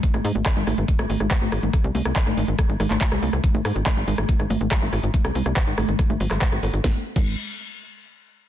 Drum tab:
CC |----------------|----------------|----------------|----------------|
HH |xxoxxxoxxxoxxxox|xxoxxxoxxxoxxxox|xxoxxxo-xxoxxxox|xxoxxxoxxxoxxxox|
CP |----x-------x---|----x------xx---|----x-------x---|----x------xx---|
SD |-r--r-r--r-r--r-|r--r-r--r-r--r-r|--r-r--r-r--r-r-|-r-r--r-r--r-r--|
BD |o---o---o---o---|o---o---o---o---|o---o---o---o---|o---o---o---o---|

CC |---x------------|
HH |----------------|
CP |----------------|
SD |o---------------|
BD |o--o------------|